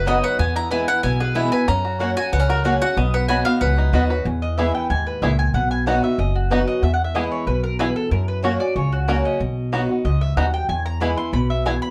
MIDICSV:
0, 0, Header, 1, 6, 480
1, 0, Start_track
1, 0, Key_signature, 5, "major"
1, 0, Tempo, 321888
1, 588, Time_signature, 4, 2, 24, 8
1, 17753, End_track
2, 0, Start_track
2, 0, Title_t, "Mandolin"
2, 0, Program_c, 0, 25
2, 114, Note_on_c, 0, 75, 96
2, 351, Note_off_c, 0, 75, 0
2, 353, Note_on_c, 0, 78, 100
2, 579, Note_off_c, 0, 78, 0
2, 585, Note_on_c, 0, 80, 90
2, 826, Note_off_c, 0, 80, 0
2, 838, Note_on_c, 0, 82, 102
2, 1058, Note_off_c, 0, 82, 0
2, 1064, Note_on_c, 0, 80, 92
2, 1306, Note_off_c, 0, 80, 0
2, 1312, Note_on_c, 0, 78, 116
2, 1533, Note_off_c, 0, 78, 0
2, 1539, Note_on_c, 0, 80, 110
2, 1783, Note_off_c, 0, 80, 0
2, 1794, Note_on_c, 0, 71, 76
2, 2016, Note_on_c, 0, 76, 82
2, 2019, Note_off_c, 0, 71, 0
2, 2258, Note_off_c, 0, 76, 0
2, 2264, Note_on_c, 0, 80, 93
2, 2494, Note_off_c, 0, 80, 0
2, 2507, Note_on_c, 0, 82, 96
2, 3183, Note_off_c, 0, 82, 0
2, 3233, Note_on_c, 0, 80, 116
2, 3458, Note_off_c, 0, 80, 0
2, 3473, Note_on_c, 0, 78, 98
2, 3710, Note_off_c, 0, 78, 0
2, 3724, Note_on_c, 0, 70, 83
2, 3944, Note_off_c, 0, 70, 0
2, 3951, Note_on_c, 0, 73, 75
2, 4189, Note_off_c, 0, 73, 0
2, 4199, Note_on_c, 0, 78, 113
2, 4421, Note_off_c, 0, 78, 0
2, 4434, Note_on_c, 0, 75, 60
2, 4671, Note_off_c, 0, 75, 0
2, 4680, Note_on_c, 0, 78, 88
2, 4892, Note_off_c, 0, 78, 0
2, 4898, Note_on_c, 0, 80, 97
2, 5138, Note_off_c, 0, 80, 0
2, 5144, Note_on_c, 0, 77, 110
2, 5374, Note_off_c, 0, 77, 0
2, 5381, Note_on_c, 0, 78, 101
2, 6168, Note_off_c, 0, 78, 0
2, 17753, End_track
3, 0, Start_track
3, 0, Title_t, "Mandolin"
3, 0, Program_c, 1, 25
3, 102, Note_on_c, 1, 59, 91
3, 108, Note_on_c, 1, 66, 86
3, 110, Note_on_c, 1, 75, 93
3, 117, Note_on_c, 1, 83, 98
3, 244, Note_off_c, 1, 59, 0
3, 246, Note_off_c, 1, 66, 0
3, 248, Note_off_c, 1, 75, 0
3, 251, Note_off_c, 1, 83, 0
3, 1056, Note_on_c, 1, 59, 88
3, 1062, Note_on_c, 1, 64, 92
3, 1066, Note_on_c, 1, 71, 102
3, 1070, Note_on_c, 1, 80, 105
3, 1200, Note_off_c, 1, 59, 0
3, 1203, Note_off_c, 1, 64, 0
3, 1206, Note_off_c, 1, 71, 0
3, 1207, Note_off_c, 1, 80, 0
3, 2019, Note_on_c, 1, 59, 78
3, 2025, Note_on_c, 1, 64, 84
3, 2030, Note_on_c, 1, 71, 85
3, 2035, Note_on_c, 1, 80, 89
3, 2162, Note_off_c, 1, 59, 0
3, 2165, Note_off_c, 1, 64, 0
3, 2167, Note_off_c, 1, 71, 0
3, 2170, Note_off_c, 1, 80, 0
3, 2983, Note_on_c, 1, 58, 90
3, 2988, Note_on_c, 1, 66, 96
3, 2991, Note_on_c, 1, 73, 105
3, 2997, Note_on_c, 1, 78, 104
3, 3124, Note_off_c, 1, 58, 0
3, 3126, Note_off_c, 1, 66, 0
3, 3128, Note_off_c, 1, 73, 0
3, 3131, Note_off_c, 1, 78, 0
3, 3948, Note_on_c, 1, 58, 77
3, 3955, Note_on_c, 1, 66, 85
3, 3959, Note_on_c, 1, 73, 94
3, 3963, Note_on_c, 1, 78, 110
3, 4086, Note_off_c, 1, 58, 0
3, 4090, Note_off_c, 1, 66, 0
3, 4092, Note_off_c, 1, 73, 0
3, 4094, Note_off_c, 1, 78, 0
3, 4906, Note_on_c, 1, 59, 93
3, 4914, Note_on_c, 1, 66, 99
3, 4916, Note_on_c, 1, 75, 93
3, 4920, Note_on_c, 1, 83, 100
3, 5045, Note_off_c, 1, 59, 0
3, 5049, Note_off_c, 1, 66, 0
3, 5050, Note_off_c, 1, 75, 0
3, 5052, Note_off_c, 1, 83, 0
3, 5865, Note_on_c, 1, 59, 88
3, 5867, Note_on_c, 1, 66, 90
3, 5876, Note_on_c, 1, 75, 94
3, 5878, Note_on_c, 1, 83, 101
3, 6005, Note_off_c, 1, 59, 0
3, 6006, Note_off_c, 1, 66, 0
3, 6010, Note_off_c, 1, 75, 0
3, 6011, Note_off_c, 1, 83, 0
3, 6593, Note_on_c, 1, 75, 87
3, 6818, Note_off_c, 1, 75, 0
3, 6825, Note_on_c, 1, 76, 79
3, 7066, Note_off_c, 1, 76, 0
3, 7076, Note_on_c, 1, 79, 84
3, 7300, Note_off_c, 1, 79, 0
3, 7308, Note_on_c, 1, 80, 101
3, 7548, Note_off_c, 1, 80, 0
3, 7554, Note_on_c, 1, 71, 80
3, 7779, Note_off_c, 1, 71, 0
3, 7786, Note_on_c, 1, 76, 88
3, 8027, Note_off_c, 1, 76, 0
3, 8035, Note_on_c, 1, 80, 113
3, 8259, Note_off_c, 1, 80, 0
3, 8265, Note_on_c, 1, 78, 94
3, 8506, Note_off_c, 1, 78, 0
3, 8513, Note_on_c, 1, 80, 100
3, 8738, Note_off_c, 1, 80, 0
3, 8753, Note_on_c, 1, 78, 96
3, 8990, Note_off_c, 1, 78, 0
3, 9002, Note_on_c, 1, 76, 89
3, 9223, Note_off_c, 1, 76, 0
3, 9229, Note_on_c, 1, 75, 85
3, 9468, Note_off_c, 1, 75, 0
3, 9475, Note_on_c, 1, 66, 64
3, 9699, Note_off_c, 1, 66, 0
3, 9708, Note_on_c, 1, 71, 69
3, 9947, Note_off_c, 1, 71, 0
3, 9953, Note_on_c, 1, 75, 95
3, 10178, Note_off_c, 1, 75, 0
3, 10191, Note_on_c, 1, 76, 94
3, 10336, Note_off_c, 1, 76, 0
3, 10342, Note_on_c, 1, 78, 95
3, 10497, Note_off_c, 1, 78, 0
3, 10503, Note_on_c, 1, 76, 84
3, 10659, Note_off_c, 1, 76, 0
3, 10660, Note_on_c, 1, 75, 95
3, 10903, Note_off_c, 1, 75, 0
3, 10911, Note_on_c, 1, 73, 88
3, 11136, Note_off_c, 1, 73, 0
3, 11142, Note_on_c, 1, 71, 83
3, 11379, Note_off_c, 1, 71, 0
3, 11385, Note_on_c, 1, 70, 96
3, 11612, Note_off_c, 1, 70, 0
3, 11618, Note_on_c, 1, 71, 106
3, 11862, Note_off_c, 1, 71, 0
3, 11868, Note_on_c, 1, 69, 93
3, 12095, Note_off_c, 1, 69, 0
3, 12104, Note_on_c, 1, 70, 78
3, 12341, Note_off_c, 1, 70, 0
3, 12347, Note_on_c, 1, 71, 81
3, 12575, Note_off_c, 1, 71, 0
3, 12583, Note_on_c, 1, 73, 82
3, 12819, Note_off_c, 1, 73, 0
3, 12825, Note_on_c, 1, 74, 100
3, 13053, Note_off_c, 1, 74, 0
3, 13060, Note_on_c, 1, 73, 88
3, 13303, Note_off_c, 1, 73, 0
3, 13308, Note_on_c, 1, 66, 76
3, 13535, Note_off_c, 1, 66, 0
3, 13542, Note_on_c, 1, 70, 72
3, 13784, Note_off_c, 1, 70, 0
3, 13796, Note_on_c, 1, 75, 85
3, 14456, Note_off_c, 1, 75, 0
3, 14985, Note_on_c, 1, 75, 89
3, 15225, Note_off_c, 1, 75, 0
3, 15228, Note_on_c, 1, 76, 99
3, 15455, Note_off_c, 1, 76, 0
3, 15464, Note_on_c, 1, 78, 85
3, 15704, Note_off_c, 1, 78, 0
3, 15712, Note_on_c, 1, 79, 101
3, 15936, Note_off_c, 1, 79, 0
3, 15942, Note_on_c, 1, 80, 98
3, 16182, Note_off_c, 1, 80, 0
3, 16188, Note_on_c, 1, 82, 108
3, 16414, Note_off_c, 1, 82, 0
3, 16420, Note_on_c, 1, 83, 94
3, 16658, Note_off_c, 1, 83, 0
3, 16664, Note_on_c, 1, 84, 104
3, 16892, Note_off_c, 1, 84, 0
3, 16899, Note_on_c, 1, 83, 101
3, 17142, Note_off_c, 1, 83, 0
3, 17149, Note_on_c, 1, 76, 83
3, 17375, Note_off_c, 1, 76, 0
3, 17385, Note_on_c, 1, 80, 92
3, 17620, Note_off_c, 1, 80, 0
3, 17626, Note_on_c, 1, 83, 108
3, 17753, Note_off_c, 1, 83, 0
3, 17753, End_track
4, 0, Start_track
4, 0, Title_t, "Five-string banjo"
4, 0, Program_c, 2, 105
4, 0, Note_on_c, 2, 66, 63
4, 0, Note_on_c, 2, 71, 58
4, 108, Note_on_c, 2, 63, 71
4, 309, Note_off_c, 2, 66, 0
4, 338, Note_off_c, 2, 71, 0
4, 356, Note_on_c, 2, 71, 56
4, 587, Note_off_c, 2, 63, 0
4, 587, Note_off_c, 2, 71, 0
4, 588, Note_on_c, 2, 59, 82
4, 830, Note_on_c, 2, 64, 63
4, 1044, Note_off_c, 2, 59, 0
4, 1062, Note_on_c, 2, 59, 59
4, 1296, Note_off_c, 2, 64, 0
4, 1314, Note_on_c, 2, 64, 63
4, 1527, Note_off_c, 2, 59, 0
4, 1545, Note_on_c, 2, 59, 66
4, 1796, Note_on_c, 2, 68, 57
4, 1979, Note_off_c, 2, 64, 0
4, 2027, Note_on_c, 2, 64, 66
4, 2224, Note_off_c, 2, 59, 0
4, 2277, Note_on_c, 2, 71, 59
4, 2460, Note_off_c, 2, 68, 0
4, 2503, Note_on_c, 2, 61, 85
4, 2506, Note_off_c, 2, 64, 0
4, 2507, Note_off_c, 2, 71, 0
4, 2756, Note_on_c, 2, 66, 56
4, 2967, Note_off_c, 2, 66, 0
4, 2985, Note_on_c, 2, 66, 54
4, 3183, Note_off_c, 2, 61, 0
4, 3221, Note_off_c, 2, 66, 0
4, 3239, Note_on_c, 2, 66, 62
4, 3470, Note_on_c, 2, 59, 64
4, 3572, Note_off_c, 2, 59, 0
4, 3572, Note_on_c, 2, 61, 70
4, 3703, Note_off_c, 2, 66, 0
4, 3721, Note_on_c, 2, 66, 59
4, 3938, Note_off_c, 2, 66, 0
4, 3950, Note_off_c, 2, 61, 0
4, 3956, Note_on_c, 2, 66, 61
4, 4187, Note_off_c, 2, 66, 0
4, 4204, Note_on_c, 2, 66, 58
4, 4431, Note_off_c, 2, 66, 0
4, 4434, Note_on_c, 2, 59, 80
4, 4684, Note_on_c, 2, 71, 58
4, 4911, Note_on_c, 2, 66, 61
4, 5109, Note_off_c, 2, 59, 0
4, 5162, Note_on_c, 2, 59, 73
4, 5344, Note_off_c, 2, 71, 0
4, 5391, Note_on_c, 2, 71, 65
4, 5587, Note_off_c, 2, 66, 0
4, 5640, Note_on_c, 2, 63, 57
4, 5823, Note_off_c, 2, 59, 0
4, 5870, Note_on_c, 2, 66, 66
4, 6067, Note_off_c, 2, 71, 0
4, 6118, Note_on_c, 2, 71, 60
4, 6302, Note_off_c, 2, 63, 0
4, 6348, Note_off_c, 2, 66, 0
4, 6348, Note_off_c, 2, 71, 0
4, 6838, Note_on_c, 2, 59, 67
4, 6846, Note_on_c, 2, 64, 62
4, 6847, Note_on_c, 2, 68, 60
4, 6941, Note_off_c, 2, 59, 0
4, 6944, Note_off_c, 2, 64, 0
4, 6946, Note_off_c, 2, 68, 0
4, 7795, Note_on_c, 2, 59, 74
4, 7804, Note_on_c, 2, 64, 70
4, 7804, Note_on_c, 2, 68, 70
4, 7900, Note_off_c, 2, 59, 0
4, 7903, Note_off_c, 2, 64, 0
4, 7904, Note_off_c, 2, 68, 0
4, 8756, Note_on_c, 2, 59, 65
4, 8763, Note_on_c, 2, 63, 61
4, 8765, Note_on_c, 2, 66, 57
4, 8860, Note_off_c, 2, 59, 0
4, 8863, Note_off_c, 2, 63, 0
4, 8864, Note_off_c, 2, 66, 0
4, 9713, Note_on_c, 2, 59, 75
4, 9724, Note_on_c, 2, 63, 74
4, 9724, Note_on_c, 2, 66, 70
4, 9819, Note_off_c, 2, 59, 0
4, 9822, Note_off_c, 2, 63, 0
4, 9824, Note_off_c, 2, 66, 0
4, 10671, Note_on_c, 2, 59, 63
4, 10678, Note_on_c, 2, 64, 64
4, 10679, Note_on_c, 2, 68, 66
4, 10778, Note_off_c, 2, 59, 0
4, 10779, Note_off_c, 2, 64, 0
4, 10781, Note_off_c, 2, 68, 0
4, 11631, Note_on_c, 2, 59, 81
4, 11639, Note_on_c, 2, 64, 77
4, 11643, Note_on_c, 2, 68, 74
4, 11737, Note_off_c, 2, 59, 0
4, 11739, Note_off_c, 2, 64, 0
4, 11743, Note_off_c, 2, 68, 0
4, 12585, Note_on_c, 2, 61, 61
4, 12595, Note_on_c, 2, 66, 61
4, 12596, Note_off_c, 2, 66, 0
4, 12596, Note_on_c, 2, 66, 67
4, 12626, Note_off_c, 2, 66, 0
4, 12695, Note_off_c, 2, 61, 0
4, 13547, Note_on_c, 2, 61, 78
4, 13554, Note_on_c, 2, 66, 74
4, 13556, Note_off_c, 2, 66, 0
4, 13556, Note_on_c, 2, 66, 73
4, 13655, Note_off_c, 2, 61, 0
4, 13659, Note_off_c, 2, 66, 0
4, 14506, Note_on_c, 2, 59, 65
4, 14514, Note_on_c, 2, 63, 57
4, 14518, Note_on_c, 2, 66, 64
4, 14615, Note_off_c, 2, 59, 0
4, 14617, Note_off_c, 2, 63, 0
4, 14620, Note_off_c, 2, 66, 0
4, 15467, Note_on_c, 2, 59, 75
4, 15479, Note_on_c, 2, 63, 80
4, 15480, Note_on_c, 2, 66, 72
4, 15576, Note_off_c, 2, 59, 0
4, 15578, Note_off_c, 2, 63, 0
4, 15581, Note_off_c, 2, 66, 0
4, 16428, Note_on_c, 2, 59, 65
4, 16432, Note_on_c, 2, 64, 59
4, 16436, Note_on_c, 2, 68, 61
4, 16535, Note_off_c, 2, 59, 0
4, 16537, Note_off_c, 2, 64, 0
4, 16539, Note_off_c, 2, 68, 0
4, 17389, Note_on_c, 2, 59, 76
4, 17396, Note_on_c, 2, 64, 81
4, 17399, Note_on_c, 2, 68, 78
4, 17496, Note_off_c, 2, 59, 0
4, 17497, Note_off_c, 2, 64, 0
4, 17501, Note_off_c, 2, 68, 0
4, 17753, End_track
5, 0, Start_track
5, 0, Title_t, "Steel-string acoustic guitar"
5, 0, Program_c, 3, 25
5, 0, Note_on_c, 3, 42, 88
5, 86, Note_on_c, 3, 54, 93
5, 99, Note_on_c, 3, 59, 86
5, 109, Note_on_c, 3, 63, 97
5, 118, Note_on_c, 3, 66, 100
5, 535, Note_off_c, 3, 42, 0
5, 553, Note_off_c, 3, 54, 0
5, 560, Note_off_c, 3, 59, 0
5, 564, Note_off_c, 3, 63, 0
5, 569, Note_off_c, 3, 66, 0
5, 577, Note_on_c, 3, 40, 86
5, 1051, Note_on_c, 3, 52, 95
5, 1060, Note_on_c, 3, 56, 99
5, 1070, Note_on_c, 3, 59, 88
5, 1078, Note_on_c, 3, 64, 101
5, 1284, Note_off_c, 3, 64, 0
5, 1297, Note_off_c, 3, 52, 0
5, 1301, Note_off_c, 3, 56, 0
5, 1302, Note_on_c, 3, 64, 57
5, 1306, Note_off_c, 3, 59, 0
5, 1495, Note_off_c, 3, 40, 0
5, 1531, Note_off_c, 3, 64, 0
5, 1541, Note_on_c, 3, 47, 101
5, 2006, Note_on_c, 3, 52, 91
5, 2016, Note_on_c, 3, 56, 100
5, 2023, Note_on_c, 3, 59, 106
5, 2034, Note_on_c, 3, 64, 105
5, 2249, Note_off_c, 3, 64, 0
5, 2254, Note_off_c, 3, 52, 0
5, 2259, Note_off_c, 3, 56, 0
5, 2263, Note_off_c, 3, 59, 0
5, 2267, Note_on_c, 3, 64, 59
5, 2294, Note_on_c, 3, 59, 46
5, 2457, Note_off_c, 3, 47, 0
5, 2493, Note_off_c, 3, 64, 0
5, 2500, Note_on_c, 3, 42, 86
5, 2507, Note_off_c, 3, 59, 0
5, 2972, Note_on_c, 3, 54, 86
5, 2983, Note_on_c, 3, 58, 89
5, 2993, Note_on_c, 3, 61, 93
5, 3001, Note_on_c, 3, 66, 102
5, 3209, Note_off_c, 3, 66, 0
5, 3217, Note_off_c, 3, 54, 0
5, 3223, Note_off_c, 3, 58, 0
5, 3227, Note_on_c, 3, 66, 51
5, 3228, Note_off_c, 3, 61, 0
5, 3253, Note_on_c, 3, 61, 48
5, 3416, Note_off_c, 3, 42, 0
5, 3453, Note_off_c, 3, 66, 0
5, 3466, Note_off_c, 3, 61, 0
5, 3466, Note_on_c, 3, 49, 94
5, 3935, Note_on_c, 3, 54, 91
5, 3951, Note_on_c, 3, 58, 87
5, 3960, Note_on_c, 3, 61, 99
5, 3967, Note_on_c, 3, 66, 98
5, 4173, Note_off_c, 3, 66, 0
5, 4179, Note_off_c, 3, 54, 0
5, 4187, Note_off_c, 3, 58, 0
5, 4191, Note_off_c, 3, 61, 0
5, 4191, Note_on_c, 3, 66, 69
5, 4215, Note_on_c, 3, 61, 53
5, 4380, Note_off_c, 3, 49, 0
5, 4415, Note_off_c, 3, 66, 0
5, 4427, Note_off_c, 3, 61, 0
5, 4432, Note_on_c, 3, 47, 85
5, 4899, Note_on_c, 3, 54, 92
5, 4911, Note_on_c, 3, 59, 90
5, 4921, Note_on_c, 3, 63, 83
5, 4927, Note_on_c, 3, 66, 107
5, 5130, Note_off_c, 3, 66, 0
5, 5141, Note_off_c, 3, 54, 0
5, 5147, Note_off_c, 3, 59, 0
5, 5148, Note_on_c, 3, 66, 58
5, 5152, Note_off_c, 3, 63, 0
5, 5179, Note_on_c, 3, 63, 48
5, 5343, Note_off_c, 3, 47, 0
5, 5373, Note_off_c, 3, 66, 0
5, 5389, Note_off_c, 3, 63, 0
5, 5391, Note_on_c, 3, 42, 95
5, 5856, Note_on_c, 3, 54, 88
5, 5867, Note_on_c, 3, 59, 95
5, 5877, Note_on_c, 3, 63, 94
5, 5887, Note_on_c, 3, 66, 94
5, 6094, Note_off_c, 3, 66, 0
5, 6099, Note_off_c, 3, 54, 0
5, 6105, Note_off_c, 3, 59, 0
5, 6110, Note_off_c, 3, 63, 0
5, 6112, Note_on_c, 3, 66, 62
5, 6141, Note_on_c, 3, 63, 50
5, 6302, Note_off_c, 3, 42, 0
5, 6336, Note_off_c, 3, 66, 0
5, 6348, Note_on_c, 3, 40, 87
5, 6350, Note_off_c, 3, 63, 0
5, 6822, Note_on_c, 3, 52, 93
5, 6831, Note_on_c, 3, 56, 88
5, 6842, Note_on_c, 3, 59, 96
5, 6847, Note_on_c, 3, 64, 94
5, 7060, Note_off_c, 3, 64, 0
5, 7062, Note_off_c, 3, 52, 0
5, 7067, Note_off_c, 3, 56, 0
5, 7072, Note_off_c, 3, 59, 0
5, 7078, Note_on_c, 3, 64, 52
5, 7106, Note_on_c, 3, 59, 47
5, 7260, Note_off_c, 3, 40, 0
5, 7298, Note_off_c, 3, 64, 0
5, 7309, Note_on_c, 3, 44, 95
5, 7312, Note_off_c, 3, 59, 0
5, 7764, Note_off_c, 3, 44, 0
5, 7792, Note_on_c, 3, 46, 90
5, 8245, Note_off_c, 3, 46, 0
5, 8275, Note_on_c, 3, 47, 88
5, 8741, Note_on_c, 3, 54, 85
5, 8752, Note_on_c, 3, 59, 91
5, 8761, Note_on_c, 3, 63, 101
5, 8771, Note_on_c, 3, 66, 103
5, 8965, Note_off_c, 3, 66, 0
5, 8982, Note_off_c, 3, 54, 0
5, 8983, Note_on_c, 3, 66, 56
5, 8987, Note_off_c, 3, 59, 0
5, 8992, Note_off_c, 3, 63, 0
5, 9013, Note_on_c, 3, 63, 48
5, 9184, Note_off_c, 3, 47, 0
5, 9211, Note_off_c, 3, 66, 0
5, 9226, Note_off_c, 3, 63, 0
5, 9226, Note_on_c, 3, 42, 96
5, 9698, Note_on_c, 3, 54, 94
5, 9705, Note_on_c, 3, 59, 96
5, 9715, Note_on_c, 3, 63, 97
5, 9724, Note_on_c, 3, 66, 101
5, 10139, Note_off_c, 3, 42, 0
5, 10159, Note_off_c, 3, 54, 0
5, 10161, Note_off_c, 3, 59, 0
5, 10167, Note_off_c, 3, 63, 0
5, 10171, Note_off_c, 3, 66, 0
5, 10181, Note_on_c, 3, 40, 96
5, 10653, Note_on_c, 3, 52, 88
5, 10663, Note_on_c, 3, 56, 95
5, 10674, Note_on_c, 3, 59, 92
5, 10680, Note_on_c, 3, 64, 99
5, 11096, Note_off_c, 3, 40, 0
5, 11116, Note_off_c, 3, 52, 0
5, 11121, Note_off_c, 3, 56, 0
5, 11126, Note_off_c, 3, 59, 0
5, 11129, Note_off_c, 3, 64, 0
5, 11139, Note_on_c, 3, 47, 94
5, 11620, Note_on_c, 3, 40, 100
5, 12055, Note_off_c, 3, 47, 0
5, 12079, Note_off_c, 3, 40, 0
5, 12099, Note_on_c, 3, 42, 96
5, 12564, Note_on_c, 3, 54, 91
5, 12578, Note_on_c, 3, 58, 97
5, 12589, Note_on_c, 3, 61, 87
5, 12594, Note_on_c, 3, 66, 107
5, 12800, Note_off_c, 3, 66, 0
5, 12812, Note_off_c, 3, 54, 0
5, 12818, Note_on_c, 3, 66, 57
5, 12819, Note_off_c, 3, 58, 0
5, 12825, Note_off_c, 3, 61, 0
5, 12845, Note_on_c, 3, 61, 46
5, 13015, Note_off_c, 3, 42, 0
5, 13047, Note_off_c, 3, 66, 0
5, 13061, Note_off_c, 3, 61, 0
5, 13061, Note_on_c, 3, 49, 92
5, 13536, Note_on_c, 3, 54, 100
5, 13550, Note_on_c, 3, 58, 86
5, 13557, Note_on_c, 3, 61, 101
5, 13566, Note_on_c, 3, 66, 103
5, 13976, Note_off_c, 3, 49, 0
5, 13997, Note_off_c, 3, 54, 0
5, 14004, Note_off_c, 3, 58, 0
5, 14007, Note_off_c, 3, 61, 0
5, 14012, Note_off_c, 3, 66, 0
5, 14024, Note_on_c, 3, 47, 86
5, 14498, Note_on_c, 3, 54, 93
5, 14506, Note_on_c, 3, 59, 88
5, 14518, Note_on_c, 3, 63, 96
5, 14527, Note_on_c, 3, 66, 98
5, 14729, Note_off_c, 3, 66, 0
5, 14739, Note_off_c, 3, 54, 0
5, 14743, Note_off_c, 3, 59, 0
5, 14747, Note_on_c, 3, 66, 52
5, 14749, Note_off_c, 3, 63, 0
5, 14774, Note_on_c, 3, 63, 50
5, 14937, Note_off_c, 3, 47, 0
5, 14972, Note_off_c, 3, 66, 0
5, 14985, Note_off_c, 3, 63, 0
5, 14985, Note_on_c, 3, 44, 94
5, 15441, Note_off_c, 3, 44, 0
5, 15462, Note_on_c, 3, 42, 99
5, 15920, Note_off_c, 3, 42, 0
5, 15943, Note_on_c, 3, 40, 79
5, 16409, Note_on_c, 3, 52, 86
5, 16419, Note_on_c, 3, 56, 105
5, 16427, Note_on_c, 3, 59, 95
5, 16439, Note_on_c, 3, 64, 97
5, 16638, Note_off_c, 3, 64, 0
5, 16654, Note_off_c, 3, 52, 0
5, 16656, Note_on_c, 3, 64, 56
5, 16659, Note_off_c, 3, 56, 0
5, 16664, Note_off_c, 3, 59, 0
5, 16685, Note_on_c, 3, 59, 45
5, 16857, Note_off_c, 3, 40, 0
5, 16886, Note_off_c, 3, 64, 0
5, 16901, Note_off_c, 3, 59, 0
5, 16901, Note_on_c, 3, 47, 104
5, 17379, Note_on_c, 3, 40, 89
5, 17753, Note_off_c, 3, 40, 0
5, 17753, Note_off_c, 3, 47, 0
5, 17753, End_track
6, 0, Start_track
6, 0, Title_t, "Upright bass"
6, 0, Program_c, 4, 32
6, 0, Note_on_c, 4, 30, 86
6, 296, Note_off_c, 4, 30, 0
6, 583, Note_on_c, 4, 40, 99
6, 1255, Note_off_c, 4, 40, 0
6, 1544, Note_on_c, 4, 35, 86
6, 2215, Note_off_c, 4, 35, 0
6, 2509, Note_on_c, 4, 42, 94
6, 3179, Note_off_c, 4, 42, 0
6, 3468, Note_on_c, 4, 37, 83
6, 4138, Note_off_c, 4, 37, 0
6, 4426, Note_on_c, 4, 35, 97
6, 5097, Note_off_c, 4, 35, 0
6, 5386, Note_on_c, 4, 37, 81
6, 5794, Note_off_c, 4, 37, 0
6, 5859, Note_on_c, 4, 39, 84
6, 6270, Note_off_c, 4, 39, 0
6, 6342, Note_on_c, 4, 40, 106
6, 7014, Note_off_c, 4, 40, 0
6, 7306, Note_on_c, 4, 39, 85
6, 7714, Note_off_c, 4, 39, 0
6, 7781, Note_on_c, 4, 37, 86
6, 8191, Note_off_c, 4, 37, 0
6, 8260, Note_on_c, 4, 35, 94
6, 8932, Note_off_c, 4, 35, 0
6, 9220, Note_on_c, 4, 30, 84
6, 9892, Note_off_c, 4, 30, 0
6, 10178, Note_on_c, 4, 40, 100
6, 10851, Note_off_c, 4, 40, 0
6, 11135, Note_on_c, 4, 35, 91
6, 11809, Note_off_c, 4, 35, 0
6, 12097, Note_on_c, 4, 42, 102
6, 12770, Note_off_c, 4, 42, 0
6, 13057, Note_on_c, 4, 37, 84
6, 13730, Note_off_c, 4, 37, 0
6, 14022, Note_on_c, 4, 35, 91
6, 14693, Note_off_c, 4, 35, 0
6, 14982, Note_on_c, 4, 37, 86
6, 15390, Note_off_c, 4, 37, 0
6, 15458, Note_on_c, 4, 39, 81
6, 15868, Note_off_c, 4, 39, 0
6, 15936, Note_on_c, 4, 40, 97
6, 16609, Note_off_c, 4, 40, 0
6, 16891, Note_on_c, 4, 35, 89
6, 17566, Note_off_c, 4, 35, 0
6, 17753, End_track
0, 0, End_of_file